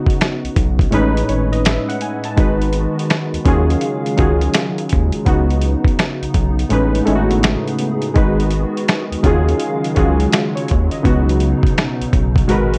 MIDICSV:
0, 0, Header, 1, 5, 480
1, 0, Start_track
1, 0, Tempo, 722892
1, 1576, Time_signature, 4, 2, 24, 8
1, 8486, End_track
2, 0, Start_track
2, 0, Title_t, "Synth keys"
2, 0, Program_c, 0, 88
2, 0, Control_c, 0, 64, 127
2, 0, Note_on_c, 0, 49, 83
2, 0, Note_on_c, 0, 59, 82
2, 0, Note_on_c, 0, 63, 82
2, 0, Note_on_c, 0, 66, 98
2, 550, Note_off_c, 0, 49, 0
2, 555, Note_off_c, 0, 59, 0
2, 559, Note_off_c, 0, 63, 0
2, 563, Note_off_c, 0, 66, 0
2, 602, Note_on_c, 0, 45, 89
2, 608, Note_on_c, 0, 56, 80
2, 614, Note_on_c, 0, 61, 82
2, 621, Note_on_c, 0, 63, 89
2, 624, Control_c, 0, 64, 0
2, 626, Note_on_c, 0, 71, 107
2, 743, Control_c, 0, 64, 127
2, 834, Note_off_c, 0, 45, 0
2, 837, Note_off_c, 0, 56, 0
2, 840, Note_off_c, 0, 61, 0
2, 844, Note_off_c, 0, 63, 0
2, 846, Note_off_c, 0, 71, 0
2, 856, Note_on_c, 0, 73, 66
2, 1002, Note_off_c, 0, 73, 0
2, 1011, Note_on_c, 0, 75, 68
2, 1093, Note_off_c, 0, 75, 0
2, 1098, Note_on_c, 0, 76, 67
2, 1243, Note_off_c, 0, 76, 0
2, 1252, Note_on_c, 0, 78, 75
2, 1333, Note_off_c, 0, 78, 0
2, 1340, Note_on_c, 0, 80, 62
2, 1484, Note_off_c, 0, 80, 0
2, 1495, Note_on_c, 0, 81, 57
2, 1569, Note_on_c, 0, 56, 83
2, 1577, Note_on_c, 0, 63, 80
2, 1585, Note_on_c, 0, 66, 69
2, 1586, Control_c, 0, 64, 0
2, 1592, Note_on_c, 0, 71, 90
2, 1700, Control_c, 0, 64, 127
2, 1720, Note_off_c, 0, 81, 0
2, 2287, Note_on_c, 0, 51, 93
2, 2293, Note_off_c, 0, 56, 0
2, 2293, Note_on_c, 0, 61, 82
2, 2297, Note_off_c, 0, 63, 0
2, 2298, Note_off_c, 0, 66, 0
2, 2300, Note_on_c, 0, 65, 81
2, 2304, Note_off_c, 0, 71, 0
2, 2305, Control_c, 0, 64, 0
2, 2306, Note_on_c, 0, 66, 79
2, 2311, Note_on_c, 0, 68, 100
2, 2423, Control_c, 0, 64, 127
2, 2742, Note_off_c, 0, 51, 0
2, 2745, Note_off_c, 0, 61, 0
2, 2748, Note_off_c, 0, 65, 0
2, 2751, Note_off_c, 0, 66, 0
2, 2754, Note_off_c, 0, 68, 0
2, 2767, Note_on_c, 0, 51, 85
2, 2772, Note_on_c, 0, 61, 70
2, 2778, Note_on_c, 0, 65, 77
2, 2784, Note_on_c, 0, 66, 74
2, 2789, Note_on_c, 0, 68, 92
2, 3447, Note_off_c, 0, 51, 0
2, 3449, Note_off_c, 0, 61, 0
2, 3452, Note_off_c, 0, 65, 0
2, 3456, Note_off_c, 0, 66, 0
2, 3458, Note_off_c, 0, 68, 0
2, 3485, Note_on_c, 0, 49, 84
2, 3493, Note_on_c, 0, 59, 77
2, 3500, Note_on_c, 0, 63, 82
2, 3507, Control_c, 0, 64, 0
2, 3508, Note_on_c, 0, 66, 89
2, 3636, Control_c, 0, 64, 127
2, 4391, Note_off_c, 0, 49, 0
2, 4395, Note_off_c, 0, 59, 0
2, 4399, Note_off_c, 0, 63, 0
2, 4403, Note_off_c, 0, 66, 0
2, 4444, Note_on_c, 0, 45, 83
2, 4451, Note_on_c, 0, 56, 79
2, 4457, Note_on_c, 0, 61, 81
2, 4462, Note_on_c, 0, 63, 81
2, 4465, Control_c, 0, 64, 0
2, 4468, Note_on_c, 0, 71, 93
2, 4565, Control_c, 0, 64, 127
2, 4675, Note_off_c, 0, 45, 0
2, 4679, Note_off_c, 0, 56, 0
2, 4682, Note_off_c, 0, 61, 0
2, 4683, Note_on_c, 0, 57, 86
2, 4685, Note_off_c, 0, 63, 0
2, 4687, Note_off_c, 0, 71, 0
2, 4689, Note_on_c, 0, 56, 82
2, 4695, Note_on_c, 0, 61, 80
2, 4700, Note_on_c, 0, 63, 77
2, 4706, Note_on_c, 0, 64, 69
2, 4749, Note_on_c, 0, 66, 99
2, 4757, Note_off_c, 0, 64, 0
2, 5365, Note_off_c, 0, 57, 0
2, 5368, Note_off_c, 0, 56, 0
2, 5371, Note_off_c, 0, 61, 0
2, 5374, Note_off_c, 0, 63, 0
2, 5398, Note_off_c, 0, 66, 0
2, 5404, Note_on_c, 0, 56, 88
2, 5413, Note_on_c, 0, 63, 82
2, 5420, Note_on_c, 0, 66, 79
2, 5424, Control_c, 0, 64, 0
2, 5428, Note_on_c, 0, 71, 91
2, 5545, Control_c, 0, 64, 127
2, 6126, Note_on_c, 0, 51, 95
2, 6130, Note_off_c, 0, 56, 0
2, 6132, Note_on_c, 0, 61, 79
2, 6135, Note_off_c, 0, 63, 0
2, 6136, Note_off_c, 0, 66, 0
2, 6138, Note_on_c, 0, 65, 88
2, 6142, Note_off_c, 0, 71, 0
2, 6144, Note_on_c, 0, 66, 82
2, 6146, Control_c, 0, 64, 0
2, 6150, Note_on_c, 0, 68, 108
2, 6261, Control_c, 0, 64, 127
2, 6582, Note_off_c, 0, 51, 0
2, 6584, Note_off_c, 0, 61, 0
2, 6587, Note_off_c, 0, 65, 0
2, 6590, Note_off_c, 0, 66, 0
2, 6593, Note_off_c, 0, 68, 0
2, 6605, Note_on_c, 0, 51, 79
2, 6611, Note_on_c, 0, 61, 76
2, 6617, Note_on_c, 0, 65, 77
2, 6622, Note_on_c, 0, 66, 83
2, 6629, Note_on_c, 0, 68, 90
2, 6847, Note_off_c, 0, 68, 0
2, 6855, Note_on_c, 0, 68, 58
2, 7002, Note_off_c, 0, 68, 0
2, 7008, Note_on_c, 0, 73, 68
2, 7237, Note_off_c, 0, 73, 0
2, 7249, Note_on_c, 0, 75, 56
2, 7286, Note_off_c, 0, 51, 0
2, 7289, Note_off_c, 0, 61, 0
2, 7292, Note_off_c, 0, 65, 0
2, 7294, Note_off_c, 0, 66, 0
2, 7326, Note_on_c, 0, 49, 88
2, 7332, Note_on_c, 0, 59, 84
2, 7340, Note_on_c, 0, 63, 73
2, 7344, Control_c, 0, 64, 0
2, 7348, Note_on_c, 0, 66, 99
2, 7478, Note_off_c, 0, 75, 0
2, 7481, Control_c, 0, 64, 127
2, 8231, Note_off_c, 0, 49, 0
2, 8235, Note_off_c, 0, 59, 0
2, 8239, Note_off_c, 0, 63, 0
2, 8242, Note_off_c, 0, 66, 0
2, 8284, Note_on_c, 0, 56, 90
2, 8292, Note_on_c, 0, 66, 84
2, 8299, Note_on_c, 0, 70, 88
2, 8304, Control_c, 0, 64, 0
2, 8307, Note_on_c, 0, 71, 95
2, 8424, Control_c, 0, 64, 127
2, 8486, Note_off_c, 0, 56, 0
2, 8486, Note_off_c, 0, 66, 0
2, 8486, Note_off_c, 0, 70, 0
2, 8486, Note_off_c, 0, 71, 0
2, 8486, End_track
3, 0, Start_track
3, 0, Title_t, "Analog synth pad"
3, 0, Program_c, 1, 89
3, 1579, Note_on_c, 1, 51, 78
3, 1579, Note_on_c, 1, 56, 77
3, 1579, Note_on_c, 1, 59, 76
3, 1579, Note_on_c, 1, 66, 81
3, 2290, Note_off_c, 1, 59, 0
3, 2290, Note_off_c, 1, 66, 0
3, 2291, Note_off_c, 1, 51, 0
3, 2291, Note_off_c, 1, 56, 0
3, 2299, Note_on_c, 1, 49, 68
3, 2300, Note_on_c, 1, 56, 67
3, 2301, Note_on_c, 1, 54, 73
3, 2301, Note_on_c, 1, 77, 84
3, 3486, Note_off_c, 1, 56, 0
3, 3487, Note_off_c, 1, 77, 0
3, 3495, Note_on_c, 1, 59, 77
3, 3495, Note_on_c, 1, 63, 98
3, 4437, Note_off_c, 1, 54, 0
3, 4456, Note_on_c, 1, 68, 76
3, 5391, Note_off_c, 1, 49, 0
3, 5397, Note_off_c, 1, 59, 0
3, 5397, Note_off_c, 1, 63, 0
3, 5415, Note_on_c, 1, 51, 75
3, 5416, Note_on_c, 1, 59, 69
3, 5416, Note_on_c, 1, 66, 92
3, 6120, Note_off_c, 1, 68, 0
3, 6128, Note_off_c, 1, 51, 0
3, 6129, Note_off_c, 1, 59, 0
3, 6129, Note_off_c, 1, 66, 0
3, 6137, Note_on_c, 1, 56, 73
3, 6138, Note_on_c, 1, 49, 82
3, 6138, Note_on_c, 1, 54, 67
3, 6139, Note_on_c, 1, 77, 93
3, 7325, Note_off_c, 1, 49, 0
3, 7325, Note_off_c, 1, 56, 0
3, 7326, Note_off_c, 1, 77, 0
3, 7338, Note_on_c, 1, 63, 91
3, 7339, Note_on_c, 1, 49, 90
3, 7340, Note_on_c, 1, 47, 81
3, 8276, Note_off_c, 1, 54, 0
3, 8287, Note_off_c, 1, 63, 0
3, 8288, Note_off_c, 1, 49, 0
3, 8296, Note_on_c, 1, 46, 87
3, 8297, Note_on_c, 1, 66, 93
3, 8298, Note_on_c, 1, 56, 79
3, 8486, Note_off_c, 1, 46, 0
3, 8486, Note_off_c, 1, 47, 0
3, 8486, Note_off_c, 1, 56, 0
3, 8486, Note_off_c, 1, 66, 0
3, 8486, End_track
4, 0, Start_track
4, 0, Title_t, "Analog synth bass"
4, 0, Program_c, 2, 38
4, 293, Note_on_c, 2, 35, 48
4, 327, Note_off_c, 2, 35, 0
4, 375, Note_on_c, 2, 35, 99
4, 575, Note_off_c, 2, 35, 0
4, 619, Note_on_c, 2, 33, 114
4, 817, Note_off_c, 2, 33, 0
4, 858, Note_on_c, 2, 32, 81
4, 1184, Note_off_c, 2, 32, 0
4, 1580, Note_on_c, 2, 32, 109
4, 1905, Note_off_c, 2, 32, 0
4, 2214, Note_on_c, 2, 39, 50
4, 2248, Note_off_c, 2, 39, 0
4, 2295, Note_on_c, 2, 39, 103
4, 2495, Note_off_c, 2, 39, 0
4, 2782, Note_on_c, 2, 37, 81
4, 2979, Note_off_c, 2, 37, 0
4, 3274, Note_on_c, 2, 39, 85
4, 3394, Note_off_c, 2, 39, 0
4, 3498, Note_on_c, 2, 37, 109
4, 3824, Note_off_c, 2, 37, 0
4, 4131, Note_on_c, 2, 35, 52
4, 4165, Note_off_c, 2, 35, 0
4, 4214, Note_on_c, 2, 35, 98
4, 4414, Note_off_c, 2, 35, 0
4, 4456, Note_on_c, 2, 33, 108
4, 4655, Note_off_c, 2, 33, 0
4, 4697, Note_on_c, 2, 32, 78
4, 5023, Note_off_c, 2, 32, 0
4, 5418, Note_on_c, 2, 32, 111
4, 5744, Note_off_c, 2, 32, 0
4, 6053, Note_on_c, 2, 39, 51
4, 6087, Note_off_c, 2, 39, 0
4, 6135, Note_on_c, 2, 39, 99
4, 6335, Note_off_c, 2, 39, 0
4, 6621, Note_on_c, 2, 37, 84
4, 6818, Note_off_c, 2, 37, 0
4, 7115, Note_on_c, 2, 39, 93
4, 7235, Note_off_c, 2, 39, 0
4, 7340, Note_on_c, 2, 37, 106
4, 7665, Note_off_c, 2, 37, 0
4, 7974, Note_on_c, 2, 35, 50
4, 8008, Note_off_c, 2, 35, 0
4, 8056, Note_on_c, 2, 35, 89
4, 8255, Note_off_c, 2, 35, 0
4, 8299, Note_on_c, 2, 32, 99
4, 8486, Note_off_c, 2, 32, 0
4, 8486, End_track
5, 0, Start_track
5, 0, Title_t, "Drums"
5, 43, Note_on_c, 9, 36, 86
5, 66, Note_on_c, 9, 42, 46
5, 109, Note_off_c, 9, 36, 0
5, 132, Note_off_c, 9, 42, 0
5, 139, Note_on_c, 9, 42, 74
5, 141, Note_on_c, 9, 26, 85
5, 144, Note_on_c, 9, 38, 118
5, 205, Note_off_c, 9, 42, 0
5, 208, Note_off_c, 9, 26, 0
5, 210, Note_off_c, 9, 38, 0
5, 298, Note_on_c, 9, 42, 48
5, 365, Note_off_c, 9, 42, 0
5, 374, Note_on_c, 9, 36, 98
5, 374, Note_on_c, 9, 42, 75
5, 440, Note_off_c, 9, 42, 0
5, 441, Note_off_c, 9, 36, 0
5, 526, Note_on_c, 9, 36, 96
5, 538, Note_on_c, 9, 42, 49
5, 592, Note_off_c, 9, 36, 0
5, 604, Note_off_c, 9, 42, 0
5, 612, Note_on_c, 9, 42, 78
5, 679, Note_off_c, 9, 42, 0
5, 778, Note_on_c, 9, 42, 52
5, 844, Note_off_c, 9, 42, 0
5, 856, Note_on_c, 9, 42, 55
5, 922, Note_off_c, 9, 42, 0
5, 1015, Note_on_c, 9, 42, 39
5, 1081, Note_off_c, 9, 42, 0
5, 1096, Note_on_c, 9, 42, 85
5, 1102, Note_on_c, 9, 26, 95
5, 1105, Note_on_c, 9, 38, 124
5, 1163, Note_off_c, 9, 42, 0
5, 1169, Note_off_c, 9, 26, 0
5, 1171, Note_off_c, 9, 38, 0
5, 1259, Note_on_c, 9, 42, 47
5, 1325, Note_off_c, 9, 42, 0
5, 1333, Note_on_c, 9, 42, 70
5, 1400, Note_off_c, 9, 42, 0
5, 1485, Note_on_c, 9, 42, 41
5, 1552, Note_off_c, 9, 42, 0
5, 1577, Note_on_c, 9, 42, 70
5, 1578, Note_on_c, 9, 36, 119
5, 1643, Note_off_c, 9, 42, 0
5, 1644, Note_off_c, 9, 36, 0
5, 1737, Note_on_c, 9, 42, 43
5, 1803, Note_off_c, 9, 42, 0
5, 1811, Note_on_c, 9, 42, 62
5, 1877, Note_off_c, 9, 42, 0
5, 1987, Note_on_c, 9, 42, 50
5, 2053, Note_off_c, 9, 42, 0
5, 2059, Note_on_c, 9, 42, 73
5, 2062, Note_on_c, 9, 26, 88
5, 2064, Note_on_c, 9, 38, 96
5, 2126, Note_off_c, 9, 42, 0
5, 2128, Note_off_c, 9, 26, 0
5, 2131, Note_off_c, 9, 38, 0
5, 2219, Note_on_c, 9, 42, 51
5, 2285, Note_off_c, 9, 42, 0
5, 2294, Note_on_c, 9, 42, 66
5, 2295, Note_on_c, 9, 36, 93
5, 2360, Note_off_c, 9, 42, 0
5, 2361, Note_off_c, 9, 36, 0
5, 2459, Note_on_c, 9, 42, 44
5, 2525, Note_off_c, 9, 42, 0
5, 2531, Note_on_c, 9, 42, 73
5, 2597, Note_off_c, 9, 42, 0
5, 2696, Note_on_c, 9, 42, 43
5, 2763, Note_off_c, 9, 42, 0
5, 2773, Note_on_c, 9, 42, 60
5, 2780, Note_on_c, 9, 36, 75
5, 2840, Note_off_c, 9, 42, 0
5, 2847, Note_off_c, 9, 36, 0
5, 2931, Note_on_c, 9, 42, 40
5, 2997, Note_off_c, 9, 42, 0
5, 3012, Note_on_c, 9, 42, 92
5, 3018, Note_on_c, 9, 26, 98
5, 3021, Note_on_c, 9, 38, 125
5, 3079, Note_off_c, 9, 42, 0
5, 3085, Note_off_c, 9, 26, 0
5, 3087, Note_off_c, 9, 38, 0
5, 3175, Note_on_c, 9, 42, 42
5, 3242, Note_off_c, 9, 42, 0
5, 3250, Note_on_c, 9, 42, 66
5, 3272, Note_on_c, 9, 36, 87
5, 3316, Note_off_c, 9, 42, 0
5, 3339, Note_off_c, 9, 36, 0
5, 3403, Note_on_c, 9, 42, 41
5, 3469, Note_off_c, 9, 42, 0
5, 3495, Note_on_c, 9, 42, 65
5, 3497, Note_on_c, 9, 36, 114
5, 3561, Note_off_c, 9, 42, 0
5, 3563, Note_off_c, 9, 36, 0
5, 3655, Note_on_c, 9, 42, 44
5, 3722, Note_off_c, 9, 42, 0
5, 3728, Note_on_c, 9, 42, 62
5, 3795, Note_off_c, 9, 42, 0
5, 3881, Note_on_c, 9, 36, 97
5, 3902, Note_on_c, 9, 42, 51
5, 3947, Note_off_c, 9, 36, 0
5, 3969, Note_off_c, 9, 42, 0
5, 3976, Note_on_c, 9, 42, 77
5, 3978, Note_on_c, 9, 26, 89
5, 3981, Note_on_c, 9, 38, 109
5, 4043, Note_off_c, 9, 42, 0
5, 4045, Note_off_c, 9, 26, 0
5, 4048, Note_off_c, 9, 38, 0
5, 4135, Note_on_c, 9, 42, 50
5, 4201, Note_off_c, 9, 42, 0
5, 4211, Note_on_c, 9, 42, 74
5, 4213, Note_on_c, 9, 36, 86
5, 4278, Note_off_c, 9, 42, 0
5, 4279, Note_off_c, 9, 36, 0
5, 4377, Note_on_c, 9, 42, 47
5, 4443, Note_off_c, 9, 42, 0
5, 4450, Note_on_c, 9, 42, 74
5, 4517, Note_off_c, 9, 42, 0
5, 4615, Note_on_c, 9, 42, 48
5, 4681, Note_off_c, 9, 42, 0
5, 4693, Note_on_c, 9, 42, 57
5, 4760, Note_off_c, 9, 42, 0
5, 4852, Note_on_c, 9, 42, 40
5, 4918, Note_off_c, 9, 42, 0
5, 4934, Note_on_c, 9, 42, 84
5, 4940, Note_on_c, 9, 26, 103
5, 4943, Note_on_c, 9, 38, 118
5, 5000, Note_off_c, 9, 42, 0
5, 5006, Note_off_c, 9, 26, 0
5, 5009, Note_off_c, 9, 38, 0
5, 5096, Note_on_c, 9, 42, 48
5, 5163, Note_off_c, 9, 42, 0
5, 5170, Note_on_c, 9, 42, 69
5, 5236, Note_off_c, 9, 42, 0
5, 5323, Note_on_c, 9, 42, 48
5, 5389, Note_off_c, 9, 42, 0
5, 5415, Note_on_c, 9, 42, 66
5, 5417, Note_on_c, 9, 36, 118
5, 5482, Note_off_c, 9, 42, 0
5, 5483, Note_off_c, 9, 36, 0
5, 5576, Note_on_c, 9, 42, 45
5, 5643, Note_off_c, 9, 42, 0
5, 5647, Note_on_c, 9, 42, 59
5, 5714, Note_off_c, 9, 42, 0
5, 5825, Note_on_c, 9, 42, 46
5, 5891, Note_off_c, 9, 42, 0
5, 5899, Note_on_c, 9, 42, 73
5, 5901, Note_on_c, 9, 26, 90
5, 5903, Note_on_c, 9, 38, 108
5, 5965, Note_off_c, 9, 42, 0
5, 5967, Note_off_c, 9, 26, 0
5, 5970, Note_off_c, 9, 38, 0
5, 6058, Note_on_c, 9, 42, 51
5, 6125, Note_off_c, 9, 42, 0
5, 6134, Note_on_c, 9, 36, 102
5, 6135, Note_on_c, 9, 42, 76
5, 6201, Note_off_c, 9, 36, 0
5, 6202, Note_off_c, 9, 42, 0
5, 6299, Note_on_c, 9, 42, 48
5, 6365, Note_off_c, 9, 42, 0
5, 6371, Note_on_c, 9, 42, 74
5, 6438, Note_off_c, 9, 42, 0
5, 6536, Note_on_c, 9, 42, 51
5, 6603, Note_off_c, 9, 42, 0
5, 6614, Note_on_c, 9, 42, 60
5, 6620, Note_on_c, 9, 36, 85
5, 6681, Note_off_c, 9, 42, 0
5, 6687, Note_off_c, 9, 36, 0
5, 6772, Note_on_c, 9, 42, 43
5, 6838, Note_off_c, 9, 42, 0
5, 6856, Note_on_c, 9, 42, 86
5, 6862, Note_on_c, 9, 26, 106
5, 6864, Note_on_c, 9, 38, 117
5, 6922, Note_off_c, 9, 42, 0
5, 6928, Note_off_c, 9, 26, 0
5, 6931, Note_off_c, 9, 38, 0
5, 7019, Note_on_c, 9, 42, 45
5, 7085, Note_off_c, 9, 42, 0
5, 7094, Note_on_c, 9, 42, 65
5, 7114, Note_on_c, 9, 36, 91
5, 7160, Note_off_c, 9, 42, 0
5, 7180, Note_off_c, 9, 36, 0
5, 7246, Note_on_c, 9, 42, 46
5, 7313, Note_off_c, 9, 42, 0
5, 7338, Note_on_c, 9, 36, 116
5, 7338, Note_on_c, 9, 42, 66
5, 7404, Note_off_c, 9, 36, 0
5, 7405, Note_off_c, 9, 42, 0
5, 7499, Note_on_c, 9, 42, 42
5, 7565, Note_off_c, 9, 42, 0
5, 7571, Note_on_c, 9, 42, 54
5, 7638, Note_off_c, 9, 42, 0
5, 7723, Note_on_c, 9, 36, 90
5, 7746, Note_on_c, 9, 42, 48
5, 7789, Note_off_c, 9, 36, 0
5, 7812, Note_off_c, 9, 42, 0
5, 7820, Note_on_c, 9, 42, 70
5, 7822, Note_on_c, 9, 26, 95
5, 7825, Note_on_c, 9, 38, 109
5, 7886, Note_off_c, 9, 42, 0
5, 7889, Note_off_c, 9, 26, 0
5, 7891, Note_off_c, 9, 38, 0
5, 7978, Note_on_c, 9, 42, 50
5, 8044, Note_off_c, 9, 42, 0
5, 8054, Note_on_c, 9, 36, 98
5, 8056, Note_on_c, 9, 42, 73
5, 8121, Note_off_c, 9, 36, 0
5, 8122, Note_off_c, 9, 42, 0
5, 8205, Note_on_c, 9, 36, 93
5, 8219, Note_on_c, 9, 42, 47
5, 8272, Note_off_c, 9, 36, 0
5, 8285, Note_off_c, 9, 42, 0
5, 8292, Note_on_c, 9, 42, 70
5, 8359, Note_off_c, 9, 42, 0
5, 8457, Note_on_c, 9, 42, 50
5, 8486, Note_off_c, 9, 42, 0
5, 8486, End_track
0, 0, End_of_file